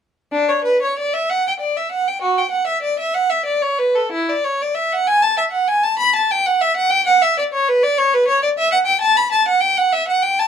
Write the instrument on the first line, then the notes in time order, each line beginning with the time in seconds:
violin
0.32 D4
0.49 C#5
0.64 B4
0.82 C#5
0.99 D5
1.14 E5
1.30 F#5
1.48 G5
1.60 D5
1.76 E5
1.92 F#5
2.08 G5
2.22 F#4
2.38 G5
2.51 F#5
2.67 E5
2.82 D5
2.99 E5
3.14 F#5
3.30 E5
3.46 D5
3.62 C#5
3.79 B4
3.95 A4
4.12 E4
4.29 D5
4.44 C#5
4.62 D5
4.75 E5
4.93 F#5
5.07 G#5
5.22 A5
5.38 E5
5.52 F#5
5.67 G#5
5.83 A5
5.99 B5
6.15 A5
6.31 G5
6.47 F#5
6.61 E5
6.77 F#5
6.90 G5
7.06 F#5
7.22 E5
7.38 D5
7.53 C#5
7.68 B4
7.83 D5
7.98 C#5
8.14 B4
8.28 C#5
8.43 D5
8.59 E5
8.72 F#5
8.86 G5
9.01 A5
9.17 B5
9.32 A5
9.48 F#5
9.61 G5
9.77 F#5
9.93 E5
10.08 F#5
10.22 G5
10.39 A5